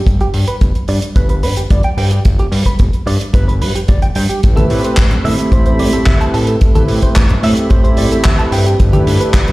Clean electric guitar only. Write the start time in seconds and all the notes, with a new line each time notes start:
0.21 G4
0.48 B4
0.89 D5
1.16 B4
1.30 B4
1.43 B4
1.57 G4
1.71 D5
1.84 G5
1.98 G5
2.12 G4
2.39 G4
2.66 B4
3.07 D5
3.34 B4
3.48 B4
3.62 B4
3.75 G4
3.88 D5
4.02 G5
4.16 G5
4.29 G4
4.57 A4
4.84 C5
5.25 E5
5.52 C5
5.66 C5
5.80 D5
5.93 A4
6.07 E5
6.21 A5
6.34 A5
6.48 A4
6.75 A4
7.03 C5
7.44 E5
7.71 C5
7.84 C5
7.98 D5
8.12 A4
8.25 E5
8.39 A5
8.53 G5
8.66 G4
8.93 G4
9.21 B4